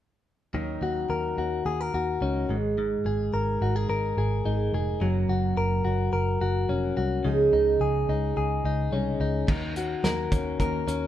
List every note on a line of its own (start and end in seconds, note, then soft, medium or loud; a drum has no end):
0.53 0.77 D#2 medium
0.53 1.42 D#3 medium
0.53 4.05 D#3 medium
0.53 1.38 F#3 medium
0.53 1.38 C#4 medium
0.53 1.37 D#4 medium
0.53 1.36 A#4 medium
0.82 1.05 D#2 medium
0.82 1.37 F#4 medium
1.09 1.33 D#2 medium
1.09 1.65 A#4 medium
1.37 1.61 D#2 medium
1.37 2.20 C#4 soft
1.37 2.21 D#4 soft
1.37 1.93 F#4 soft
1.37 2.22 A#4 soft
1.66 1.89 D#2 medium
1.66 1.81 G#4 medium
1.81 2.56 A#4 soft
1.94 2.17 D#2 medium
1.94 2.56 F#4 medium
2.20 2.44 C#2 medium
2.20 2.49 F#3 medium
2.20 2.49 C#4 medium
2.20 2.55 C#4 soft
2.20 2.48 D#4 medium
2.20 2.47 A#4 medium
2.48 2.95 G#1 medium
2.48 2.77 G#2 medium
2.48 3.62 G#2 medium
2.48 3.62 D#3 soft
2.48 3.61 G#3 medium
2.48 3.60 D#4 medium
2.48 3.60 G#4 medium
2.48 3.59 A#4 medium
2.78 5.01 G#2 medium
3.05 3.28 G#1 medium
3.05 3.62 G#4 soft
3.33 3.56 G#1 medium
3.33 3.89 A#4 medium
3.60 3.84 G#1 medium
3.60 4.43 G#3 soft
3.60 4.43 D#4 medium
3.60 3.76 F#4 soft
3.60 4.44 G#4 soft
3.60 4.46 A#4 medium
3.76 4.17 G#4 soft
3.89 4.12 G#1 medium
3.89 5.57 A#4 medium
4.17 4.40 G#1 medium
4.17 4.73 G#4 medium
4.44 4.68 G#1 medium
4.44 5.00 G#3 medium
4.44 5.01 D#4 soft
4.44 5.07 D#4 soft
4.44 5.01 G#4 medium
4.44 5.01 A#4 medium
4.73 4.96 F1 medium
4.73 5.07 G#4 soft
5.00 5.24 F#1 medium
5.00 5.84 F#3 medium
5.00 7.25 F#3 medium
5.00 5.85 A#3 medium
5.00 5.86 C#4 medium
5.00 5.84 F#4 medium
5.00 5.83 A#4 medium
5.29 5.52 F#1 medium
5.29 5.83 F#4 medium
5.57 5.80 F#1 medium
5.57 6.12 A#4 medium
5.84 6.08 F#1 medium
5.84 6.69 C#4 soft
5.84 6.40 F#4 medium
5.84 6.69 F#4 soft
5.84 6.69 A#4 medium
6.13 6.36 F#1 medium
6.13 7.30 A#4 medium
6.41 6.64 F#1 medium
6.41 6.96 F#4 medium
6.68 6.92 F1 medium
6.68 7.24 A#3 medium
6.68 7.25 C#4 medium
6.68 7.56 C#4 medium
6.68 7.25 F#4 medium
6.68 7.25 A#4 medium
6.97 7.20 C2 medium
6.97 7.30 F#4 soft
7.24 7.48 C#2 medium
7.24 8.08 C#3 medium
7.24 9.48 C#3 medium
7.24 8.08 F3 medium
7.24 8.09 G#3 medium
7.24 8.09 C#4 medium
7.24 8.08 D#4 medium
7.24 8.07 G#4 medium
7.53 7.76 C#2 medium
7.53 8.09 D#4 medium
7.81 8.04 C#2 medium
7.81 8.36 G#4 medium
8.08 8.32 C#2 medium
8.08 8.90 G#3 soft
8.08 8.92 C#4 medium
8.08 8.93 D#4 medium
8.08 8.65 D#4 medium
8.08 8.92 G#4 medium
8.37 8.60 C#2 medium
8.37 9.54 G#4 medium
8.65 8.87 C#2 medium
8.65 9.20 D#4 medium
8.91 9.15 C2 medium
8.91 9.47 G#3 medium
8.91 9.46 C#4 medium
8.91 9.54 C#4 medium
8.91 9.48 D#4 medium
8.91 9.48 G#4 medium
9.20 9.43 C#2 medium
9.20 9.77 D#4 soft
9.47 9.94 D#2 medium
9.47 9.75 D#3 medium
9.47 11.07 D#3 medium
9.47 9.76 A#3 medium
9.47 9.76 C#4 medium
9.47 9.75 F#4 medium
9.47 9.74 A#4 medium
9.47 kick loud
9.47 crash medium
9.75 10.03 C#4 soft
9.75 10.04 F#4 soft
9.75 11.07 F#4 soft
9.75 10.03 A#4 medium
9.75 closed hi-hat medium
10.03 10.27 D#2 medium
10.03 10.31 A#3 medium
10.03 10.32 C#4 medium
10.03 10.31 F#4 medium
10.03 10.60 A#4 medium
10.03 10.30 A#4 medium
10.03 snare loud
10.03 closed hi-hat medium
10.31 10.55 D#2 medium
10.31 10.86 C#4 soft
10.31 10.59 C#4 soft
10.31 10.59 F#4 medium
10.31 10.59 A#4 medium
10.31 kick medium
10.31 closed hi-hat medium
10.60 10.83 D#2 medium
10.60 10.87 D#3 medium
10.60 10.88 A#3 medium
10.60 10.88 C#4 medium
10.60 10.87 F#4 medium
10.60 11.07 A#4 medium
10.60 10.85 A#4 medium
10.60 kick medium
10.60 closed hi-hat medium
10.87 11.07 D#2 medium
10.87 11.07 C#4 medium
10.87 11.07 C#4 soft
10.87 11.07 F#4 soft
10.87 11.07 A#4 medium
10.87 closed hi-hat medium